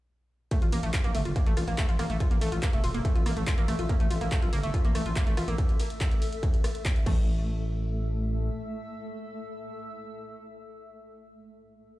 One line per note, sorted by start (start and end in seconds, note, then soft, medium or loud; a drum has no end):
0.51 7.05 A3 medium
0.51 0.59 A3 loud
0.51 kick loud
0.51 closed hi-hat medium
0.51 ride medium
0.62 0.69 A1 medium
0.62 0.67 F4 medium
0.62 closed hi-hat medium
0.72 0.79 A1 loud
0.72 0.77 A#3 loud
0.72 open hi-hat loud
0.72 ride medium
0.83 0.90 A1 medium
0.83 0.90 A3 loud
0.83 closed hi-hat medium
0.93 0.98 F4 medium
0.93 kick loud
0.93 clap loud
0.93 closed hi-hat medium
0.93 ride medium
0.98 7.06 A4 medium
1.03 1.11 A#1 medium
1.03 1.09 A#3 loud
1.03 7.06 E6 medium
1.03 closed hi-hat medium
1.15 1.22 G1 loud
1.15 1.22 A3 loud
1.15 7.06 E5 medium
1.15 open hi-hat loud
1.15 ride medium
1.25 1.32 G1 medium
1.25 1.30 F4 medium
1.25 closed hi-hat medium
1.36 1.41 A#3 loud
1.36 kick loud
1.36 closed hi-hat medium
1.36 ride medium
1.46 1.53 A1 medium
1.46 1.54 A3 loud
1.46 closed hi-hat medium
1.57 1.64 A1 medium
1.57 1.62 F4 medium
1.57 cross-stick medium
1.57 open hi-hat loud
1.57 ride medium
1.68 1.74 A1 medium
1.68 1.72 A#3 loud
1.68 closed hi-hat medium
1.78 1.85 A3 loud
1.78 kick loud
1.78 clap loud
1.78 closed hi-hat medium
1.78 ride medium
1.89 1.95 A1 medium
1.89 1.94 F4 medium
1.89 closed hi-hat medium
1.99 2.06 A1 loud
1.99 2.04 A#3 loud
1.99 cross-stick medium
1.99 open hi-hat medium
1.99 ride medium
2.10 2.17 A1 medium
2.10 2.17 A3 loud
2.10 closed hi-hat medium
2.20 2.25 F4 medium
2.20 kick loud
2.20 closed hi-hat medium
2.20 ride medium
2.31 2.38 A1 medium
2.31 2.36 A#3 loud
2.31 closed hi-hat medium
2.41 2.48 A1 loud
2.41 2.49 A3 loud
2.41 open hi-hat loud
2.41 ride medium
2.52 2.59 A1 medium
2.52 2.57 F4 medium
2.52 closed hi-hat medium
2.63 2.68 A#3 loud
2.63 kick loud
2.63 clap loud
2.63 closed hi-hat medium
2.63 ride medium
2.73 2.80 E1 medium
2.73 2.81 A3 loud
2.73 closed hi-hat medium
2.84 2.91 E1 loud
2.84 2.89 F4 medium
2.84 open hi-hat medium
2.84 ride medium
2.94 3.01 E1 medium
2.94 2.99 A#3 loud
2.94 closed hi-hat medium
3.05 3.12 A3 loud
3.05 kick loud
3.05 closed hi-hat medium
3.05 ride medium
3.15 3.22 A1 medium
3.15 3.20 F4 medium
3.15 closed hi-hat medium
3.26 3.33 A1 loud
3.26 3.31 A#3 loud
3.26 cross-stick medium
3.26 open hi-hat loud
3.26 ride medium
3.37 3.43 A1 medium
3.37 3.44 A3 loud
3.37 closed hi-hat medium
3.47 3.52 F4 medium
3.47 kick loud
3.47 clap loud
3.47 closed hi-hat medium
3.47 ride medium
3.58 3.65 A1 medium
3.58 3.63 A#3 loud
3.58 closed hi-hat medium
3.68 3.75 A1 loud
3.68 3.76 A3 loud
3.68 cross-stick medium
3.68 open hi-hat medium
3.68 ride medium
3.79 3.86 A1 medium
3.79 3.84 F4 medium
3.79 closed hi-hat medium
3.89 3.94 A#3 loud
3.89 kick loud
3.89 closed hi-hat medium
3.89 ride medium
4.00 4.07 A1 medium
4.00 4.07 A3 loud
4.00 closed hi-hat medium
4.11 4.17 A1 loud
4.11 4.15 F4 medium
4.11 open hi-hat loud
4.11 ride medium
4.21 4.28 A1 medium
4.21 4.26 A#3 loud
4.21 closed hi-hat medium
4.32 4.39 A3 medium
4.32 kick loud
4.32 clap loud
4.32 closed hi-hat medium
4.32 ride medium
4.42 4.49 A#1 medium
4.42 4.47 F4 medium
4.42 closed hi-hat medium
4.53 4.60 G1 loud
4.53 4.58 A#3 loud
4.53 open hi-hat loud
4.53 ride medium
4.63 4.70 G1 medium
4.63 4.71 A3 loud
4.63 closed hi-hat medium
4.74 4.79 F4 medium
4.74 kick loud
4.74 closed hi-hat medium
4.74 ride medium
4.85 4.91 A1 medium
4.85 4.89 A#3 loud
4.85 closed hi-hat medium
4.95 5.02 A1 loud
4.95 5.02 A3 loud
4.95 cross-stick medium
4.95 open hi-hat loud
4.95 ride medium
5.06 5.12 A1 medium
5.06 5.11 F4 medium
5.06 closed hi-hat medium
5.16 5.21 A#3 loud
5.16 kick loud
5.16 clap loud
5.16 closed hi-hat medium
5.16 ride medium
5.27 5.34 A1 medium
5.27 5.34 A3 loud
5.27 closed hi-hat medium
5.37 5.44 A1 medium
5.37 5.42 F4 medium
5.37 cross-stick medium
5.37 open hi-hat medium
5.37 ride medium
5.48 5.55 A1 medium
5.48 5.53 A#3 loud
5.48 closed hi-hat medium
5.58 kick loud
5.58 closed hi-hat medium
5.58 ride medium
5.69 closed hi-hat medium
5.80 open hi-hat loud
5.80 ride medium
5.90 closed hi-hat medium
6.01 kick loud
6.01 clap loud
6.01 closed hi-hat medium
6.01 ride medium
6.11 closed hi-hat medium
6.22 open hi-hat loud
6.22 ride medium
6.33 closed hi-hat soft
6.43 kick loud
6.43 closed hi-hat medium
6.43 ride medium
6.54 closed hi-hat medium
6.64 cross-stick loud
6.64 open hi-hat loud
6.64 ride medium
6.75 closed hi-hat medium
6.85 kick loud
6.85 clap loud
6.85 closed hi-hat medium
6.85 ride medium
6.96 closed hi-hat soft
7.06 8.50 A1 medium
7.06 11.41 A3 medium
7.06 7.46 A3 medium
7.06 kick loud
7.06 crash medium
7.13 11.42 A4 medium
7.40 11.41 E5 medium
7.46 11.41 E6 medium